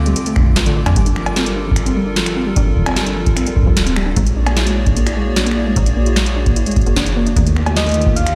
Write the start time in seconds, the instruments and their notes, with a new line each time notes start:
Already playing: fm bass D2, analog synth pad D3 A3 C4 F4, soft synth lead F5, synth texture D6
0.06 synth arpeggio sound G3, closed hi-hat
0.16 synth arpeggio sound D3, closed hi-hat
0.26 synth arpeggio sound A3, closed hi-hat
0.36 synth arpeggio sound D4, finger snap, kick
0.40 kick
0.43 kick
0.46 kick
0.50 kick
0.53 fm bass A1, synth arpeggio sound A2, kick, snare, closed hi-hat
0.66 synth arpeggio sound D3, closed hi-hat
0.76 synth arpeggio sound D3
0.86 fm bass F2, synth arpeggio sound D4, finger snap, closed hi-hat, cowbell
0.96 fm bass G1, analog synth pad G3 F4 A4 A#4, synth arpeggio sound G3, kick, closed hi-hat
1.06 synth arpeggio sound D4, closed hi-hat
1.16 synth arpeggio sound F3, finger snap
1.26 closed hi-hat, cowbell
1.36 synth arpeggio sound C4, snare, closed hi-hat
1.46 synth arpeggio sound G3, closed hi-hat
1.56 synth arpeggio sound D4
1.66 synth arpeggio sound F3
1.71 kick
1.76 finger snap, closed hi-hat
1.86 synth arpeggio sound C4, closed hi-hat
1.96 synth arpeggio sound G3
2.06 synth arpeggio sound D4
2.16 synth arpeggio sound F3, snare, closed hi-hat
2.26 finger snap, closed hi-hat
2.36 synth arpeggio sound C4
2.46 synth arpeggio sound G3
2.56 fm bass G1, synth arpeggio sound D4, kick, closed hi-hat
2.66 synth arpeggio sound F3
2.76 kick
2.79 kick
2.81 kick
2.84 synth arpeggio sound C4, finger snap, kick, closed hi-hat, cowbell
2.89 cowbell
2.91 cowbell
2.94 synth arpeggio sound G3, snare, closed hi-hat, cowbell
2.96 cowbell
2.99 cowbell
3.01 cowbell
3.04 synth arpeggio sound D4, closed hi-hat, cowbell
3.16 synth arpeggio sound F3
3.26 kick, closed hi-hat
3.36 synth arpeggio sound C4, finger snap, closed hi-hat
3.46 synth arpeggio sound G3, closed hi-hat
3.56 synth arpeggio sound D4, kick
3.63 fm bass F1, synth arpeggio sound F3, kick
3.70 kick
3.77 fm bass D1, snare, closed hi-hat
3.86 synth arpeggio sound C4, closed hi-hat
3.96 synth arpeggio sound G3, finger snap
4.06 synth arpeggio sound D4
4.16 fm bass A#1, synth arpeggio sound G#3, analog synth pad A#3 F#4 G#4 C#5 D5, kick, closed hi-hat
4.26 closed hi-hat
4.36 synth arpeggio sound D4
4.46 synth arpeggio sound A#3, finger snap, closed hi-hat, cowbell
4.56 synth arpeggio sound E4, snare, closed hi-hat
4.66 synth arpeggio sound G#3, closed hi-hat
4.86 synth arpeggio sound D4, kick, closed hi-hat
4.97 synth arpeggio sound A#3, closed hi-hat
5.07 synth arpeggio sound E4, finger snap, closed hi-hat
5.16 synth arpeggio sound G#3
5.36 synth arpeggio sound D4, snare, closed hi-hat
5.46 synth arpeggio sound A#3, closed hi-hat
5.51 finger snap
5.57 synth arpeggio sound E4
5.67 synth arpeggio sound G#3
5.76 fm bass A#1, kick, closed hi-hat
5.86 synth arpeggio sound D4, closed hi-hat
5.97 synth arpeggio sound A#3
6.06 synth arpeggio sound E4, closed hi-hat
6.16 synth arpeggio sound G#3, finger snap, snare, closed hi-hat
6.26 closed hi-hat
6.37 synth arpeggio sound D4
6.46 synth arpeggio sound A#3, kick, closed hi-hat
6.56 synth arpeggio sound E4, closed hi-hat
6.66 synth arpeggio sound G#3, closed hi-hat
6.71 closed hi-hat
6.76 kick, closed hi-hat
6.81 closed hi-hat
6.86 fm bass F#1, synth arpeggio sound A#3, closed hi-hat
6.96 fm bass F#1, synth arpeggio sound E3, snare, closed hi-hat
7.06 closed hi-hat
7.16 synth arpeggio sound A#3
7.27 synth arpeggio sound D4, closed hi-hat
7.36 fm bass D#2, analog synth pad D3 D#3 A3 F4 G4, synth arpeggio sound A3, kick, closed hi-hat
7.46 synth arpeggio sound D#3, closed hi-hat
7.57 synth arpeggio sound A#3, finger snap
7.66 synth arpeggio sound D3, closed hi-hat, cowbell
7.76 soft synth lead D#5, snare, closed hi-hat
7.86 synth arpeggio sound A3, closed hi-hat
7.89 closed hi-hat
7.92 closed hi-hat
7.94 synth arpeggio sound D#3, closed hi-hat
8.01 closed hi-hat
8.06 synth arpeggio sound A#3, kick
8.16 synth arpeggio sound D3, soft synth lead F5, closed hi-hat
8.27 finger snap, closed hi-hat